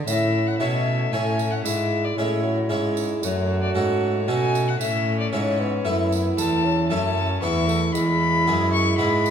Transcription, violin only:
0.07 0.48 E5 medium
0.47 0.58 F#5 medium
0.59 1.14 E5 medium
1.12 1.53 G#5 medium
1.51 1.64 F#5 medium
1.64 2.06 E5 medium
2.05 2.19 D5 medium
2.17 2.96 C#5 medium
3.23 3.59 C#5 medium
3.63 3.75 D5 medium
3.75 4.29 C#5 medium
4.28 4.69 G#5 medium
4.68 4.79 F#5 medium
4.80 5.19 E5 medium
5.20 5.32 D5 medium
5.33 6.10 C#5 medium
6.38 6.87 A5 medium
6.90 7.41 A5 medium
7.43 7.94 C#6 medium
7.95 8.72 B5 loud
8.74 8.98 C#6 loud
8.99 9.30 B5 medium

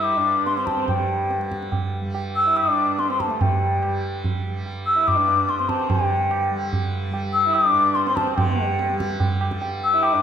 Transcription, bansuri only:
0.03 0.45 D6 medium
0.46 0.56 C6 medium
0.57 0.68 C6 medium
0.66 0.88 A5 medium
0.88 1.47 G5 medium
2.36 2.58 E6 loud
2.57 2.72 D#6 medium
2.72 3.01 D6 medium
2.99 3.09 C6 medium
3.11 3.22 C6 medium
3.20 3.43 A5 medium
3.41 4.03 G5 medium
4.86 5.09 E6 loud
5.08 5.51 D6 medium
5.50 5.58 C6 medium
5.59 5.70 C6 medium
5.69 5.91 A5 medium
5.90 6.52 G5 medium
7.33 7.56 E6 loud
7.54 7.69 D#6 loud
7.69 7.96 D6 loud
7.95 8.05 C6 medium
8.06 8.18 C6 medium
8.16 8.31 A5 medium
8.31 8.38 A5 medium
8.36 8.98 G5 medium
9.84 10.05 E6 loud
10.03 10.22 D6 medium

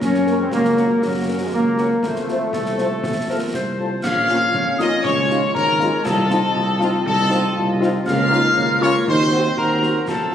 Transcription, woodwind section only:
0.02 0.51 F#4 medium
0.02 0.49 A#4 medium
0.52 0.99 F#4 medium
0.52 0.99 A#4 medium
1.03 1.50 F#4 medium
1.03 1.49 A#4 medium
1.54 1.91 F#4 medium
1.54 1.90 A#4 medium
2.04 2.49 F4 medium
2.04 2.46 C5 medium
2.54 3.25 A4 medium
3.29 3.52 A#4 medium
3.54 4.01 C5 medium
4.05 5.01 F4 medium
4.05 5.01 C#5 medium
5.04 6.01 F4 medium
5.04 6.01 C#5 medium
6.04 7.01 F4 medium
6.04 7.04 D#5 medium
7.05 8.02 F4 loud
7.05 8.02 D#5 loud
8.07 9.03 F4 loud
8.07 9.04 A#4 medium
9.08 10.08 F#4 medium
9.08 10.07 C5 medium
10.08 10.35 F4 medium
10.08 10.35 C5 medium

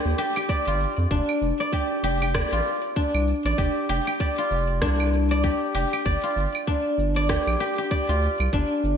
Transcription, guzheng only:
0.00 1.10 D4 medium
0.00 0.67 F4 medium
0.00 0.18 G4 medium
0.00 0.49 D5 medium
0.18 0.36 G4 loud
0.36 1.73 G4 medium
0.49 1.60 D5 loud
0.67 2.52 F4 medium
1.11 2.96 D4 medium
1.60 2.34 D5 medium
1.73 2.03 G4 loud
2.04 2.21 G4 loud
2.22 3.58 G4 medium
2.35 3.45 D5 loud
2.53 4.38 F4 medium
2.96 4.82 D4 medium
3.46 4.20 D5 medium
3.58 3.89 G4 medium
3.89 4.07 G4 loud
4.07 5.43 G4 medium
4.20 5.31 D5 medium
4.38 6.23 F4 medium
4.82 6.67 D4 medium
5.31 6.05 D5 loud
5.44 5.74 G4 loud
5.75 5.93 G4 loud
5.93 7.29 G4 medium
6.05 7.16 D5 medium
6.23 8.09 F4 medium
6.67 8.53 D4 medium
7.16 7.91 D5 medium
7.29 7.60 G4 medium
7.60 7.78 G4 medium
7.78 8.97 G4 medium
7.91 8.97 D5 loud
8.09 8.97 F4 medium
8.53 8.97 D4 medium

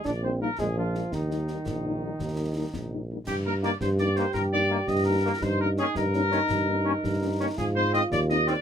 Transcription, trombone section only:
3.62 3.69 D#3 medium
3.62 3.69 A#3 medium
4.17 4.23 D#3 medium
4.17 4.23 A#3 medium
4.70 4.76 D#3 medium
4.70 4.76 A#3 medium
5.24 5.30 D#3 medium
5.24 5.31 A#3 medium
5.78 5.85 D#3 medium
5.78 5.85 C#4 medium
6.31 6.38 D#3 medium
6.31 6.38 C#4 medium
6.85 6.92 D#3 medium
6.85 6.92 C#4 medium
7.39 7.46 D#3 medium
7.39 7.45 C#4 medium
7.93 7.99 D#3 medium
7.93 7.99 C4 medium
8.46 8.53 D#3 medium
8.46 8.53 C4 medium

